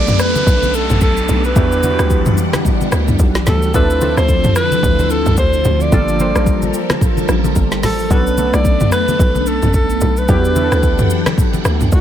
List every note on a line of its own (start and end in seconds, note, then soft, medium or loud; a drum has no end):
0.00 0.18 B1 loud
0.00 1.56 F#3 medium
0.00 0.53 A3 medium
0.00 1.54 A3 medium
0.00 1.54 B3 medium
0.00 1.56 B3 medium
0.00 1.58 C#4 medium
0.00 1.57 D4 medium
0.00 3.70 D4 medium
0.00 1.57 G4 medium
0.00 1.58 A4 medium
0.00 0.22 D5 loud
0.00 downlifter medium
0.08 mid tom loud
0.08 high conga medium
0.08 shaker medium
0.19 0.76 B4 loud
0.19 cross-stick loud
0.19 shaker medium
0.35 high conga medium
0.35 shaker medium
0.47 0.88 B1 loud
0.47 kick loud
0.47 low conga medium
0.47 shaker medium
0.63 high conga medium
0.63 shaker medium
0.74 1.02 A4 medium
0.74 shaker medium
0.90 1.03 A1 medium
0.90 mid tom medium
0.90 high conga medium
0.90 shaker medium
1.01 1.28 B1 loud
1.01 1.42 A4 loud
1.01 kick loud
1.01 shaker medium
1.17 shaker medium
1.28 1.55 B1 medium
1.28 low conga medium
1.28 shaker medium
1.44 2.50 B4 loud
1.44 shaker soft
1.56 1.97 E2 loud
1.56 3.72 E3 medium
1.56 1.79 F#3 medium
1.56 3.72 G3 loud
1.56 1.79 B3 medium
1.56 1.79 D4 medium
1.56 1.79 E4 medium
1.56 1.79 G4 medium
1.56 3.72 F#5 medium
1.56 kick loud
1.56 low conga medium
1.56 shaker medium
1.72 shaker medium
1.83 2.71 B3 medium
1.83 2.72 D4 medium
1.83 2.72 E4 medium
1.83 1.91 F#4 medium
1.83 high conga medium
1.83 shaker loud
1.91 2.75 G4 medium
1.99 2.36 D2 medium
1.99 cross-stick medium
1.99 shaker medium
2.10 kick loud
2.10 shaker medium
2.26 mid tom loud
2.26 high conga medium
2.26 shaker medium
2.37 shaker medium
2.53 cross-stick loud
2.53 snare medium
2.53 high conga medium
2.53 shaker medium
2.65 kick loud
2.65 low conga medium
2.65 shaker medium
2.81 high conga medium
2.81 shaker medium
2.92 3.19 D2 medium
2.92 cross-stick loud
2.92 shaker medium
3.08 mid tom medium
3.08 high conga medium
3.08 shaker medium
3.19 3.46 B1 loud
3.19 kick loud
3.19 shaker medium
3.35 snare medium
3.35 shaker medium
3.46 3.73 D2 loud
3.46 3.73 A4 medium
3.46 snare medium
3.46 low conga medium
3.46 shaker medium
3.62 shaker soft
3.74 4.16 D2 loud
3.74 5.90 D3 medium
3.74 3.97 F3 medium
3.74 8.06 F3 loud
3.74 3.97 C4 medium
3.74 5.90 C4 medium
3.74 3.97 D4 medium
3.74 5.90 E4 medium
3.74 3.97 E4 medium
3.74 3.97 A4 medium
3.74 4.15 B4 loud
3.74 kick loud
3.74 low conga medium
3.74 shaker medium
3.90 shaker medium
4.01 4.89 F3 medium
4.01 4.90 C4 medium
4.01 4.90 D4 medium
4.01 4.90 E4 medium
4.01 4.90 A4 medium
4.01 high conga medium
4.01 shaker loud
4.17 4.55 D2 loud
4.17 4.54 C5 loud
4.17 cross-stick medium
4.17 shaker medium
4.28 kick loud
4.28 shaker medium
4.44 mid tom loud
4.44 high conga medium
4.44 shaker medium
4.56 5.13 B4 loud
4.56 cross-stick loud
4.56 shaker loud
4.72 high conga medium
4.72 shaker medium
4.83 5.25 D2 loud
4.83 kick loud
4.83 low conga medium
4.83 shaker medium
4.99 high conga medium
4.99 shaker medium
5.10 5.38 A4 loud
5.10 shaker medium
5.26 5.37 C2 medium
5.26 mid tom medium
5.26 high conga medium
5.26 shaker medium
5.37 5.64 D2 loud
5.37 5.83 C5 loud
5.37 kick loud
5.37 shaker medium
5.53 shaker medium
5.64 5.91 D2 loud
5.64 low conga medium
5.64 shaker medium
5.80 6.90 D5 loud
5.80 shaker soft
5.92 6.34 G1 loud
5.92 6.15 G3 medium
5.92 8.08 G3 medium
5.92 6.15 A#3 medium
5.92 6.15 D4 medium
5.92 6.15 F4 medium
5.92 8.08 A4 medium
5.92 6.16 A4 medium
5.92 8.08 A#4 loud
5.92 kick loud
5.92 low conga medium
5.92 shaker medium
6.08 shaker medium
6.19 7.08 G3 medium
6.19 7.08 A#3 medium
6.19 7.08 D4 medium
6.19 7.08 F4 medium
6.19 7.08 C5 medium
6.19 high conga medium
6.19 shaker medium
6.35 6.73 A1 medium
6.35 cross-stick medium
6.35 shaker medium
6.47 kick loud
6.47 shaker medium
6.62 high conga medium
6.62 shaker medium
6.74 shaker medium
6.90 cross-stick loud
6.90 snare medium
6.90 high conga medium
6.90 shaker medium
7.01 kick loud
7.01 low conga medium
7.01 shaker medium
7.17 high conga medium
7.17 shaker medium
7.28 7.55 A1 loud
7.28 cross-stick medium
7.28 shaker medium
7.44 high conga medium
7.44 shaker medium
7.56 7.85 G1 loud
7.56 kick loud
7.56 shaker medium
7.72 snare medium
7.72 shaker medium
7.83 8.09 A1 medium
7.83 8.13 A4 loud
7.83 snare medium
7.83 open hi-hat medium
7.83 high conga medium
7.83 low conga medium
7.83 shaker medium
7.99 shaker soft
8.10 8.52 B1 loud
8.10 8.33 F#3 medium
8.10 10.27 A3 medium
8.10 8.33 B3 medium
8.10 10.27 B3 medium
8.10 8.33 C#4 medium
8.10 10.27 D4 medium
8.10 8.34 D4 medium
8.10 8.34 A4 medium
8.10 8.56 B4 loud
8.10 kick loud
8.10 low conga medium
8.10 shaker medium
8.27 shaker medium
8.38 9.26 F#3 medium
8.38 9.26 A3 medium
8.38 9.26 B3 medium
8.38 9.26 D4 medium
8.38 9.27 A4 medium
8.38 high conga medium
8.38 shaker loud
8.54 8.91 B1 loud
8.54 8.92 D5 loud
8.54 cross-stick medium
8.54 shaker medium
8.65 kick loud
8.65 shaker medium
8.80 mid tom loud
8.80 high conga medium
8.80 shaker medium
8.92 9.49 B4 loud
8.92 cross-stick loud
8.92 shaker medium
9.08 high conga medium
9.08 shaker medium
9.19 9.61 B1 loud
9.19 kick loud
9.19 low conga medium
9.19 shaker medium
9.35 high conga medium
9.35 shaker medium
9.46 9.75 A4 medium
9.46 shaker medium
9.62 9.76 A1 medium
9.62 mid tom medium
9.62 high conga medium
9.62 shaker medium
9.73 10.00 B1 loud
9.73 10.20 A4 medium
9.73 kick loud
9.73 shaker medium
9.90 shaker medium
10.01 10.28 B1 medium
10.01 low conga medium
10.01 shaker medium
10.17 11.27 B4 loud
10.17 shaker medium
10.28 10.70 E2 loud
10.28 12.01 E3 medium
10.28 10.51 F#3 medium
10.28 10.51 B3 medium
10.28 12.01 D4 medium
10.28 10.52 D4 medium
10.28 10.52 E4 medium
10.28 10.52 G4 medium
10.28 12.01 F#5 medium
10.28 12.01 G5 medium
10.28 kick loud
10.28 low conga medium
10.28 shaker medium
10.45 shaker medium
10.56 11.44 F#3 medium
10.56 11.44 B3 medium
10.56 11.44 D4 medium
10.56 11.45 E4 medium
10.56 10.64 G4 medium
10.56 high conga medium
10.56 shaker loud
10.64 11.48 A4 medium
10.72 11.09 D2 medium
10.72 cross-stick medium
10.72 shaker medium
10.83 kick loud
10.83 shaker medium
10.98 mid tom loud
10.98 high conga medium
10.98 shaker medium
11.10 shaker medium
11.26 cross-stick loud
11.26 snare medium
11.26 high conga medium
11.26 shaker medium
11.38 kick loud
11.38 low conga medium
11.38 shaker medium
11.53 high conga medium
11.53 shaker medium
11.65 11.91 D2 medium
11.65 cross-stick loud
11.65 shaker medium
11.81 mid tom medium
11.81 high conga medium
11.81 shaker medium
11.92 12.01 B1 loud
11.92 12.01 G4 medium
11.92 kick loud
11.92 shaker medium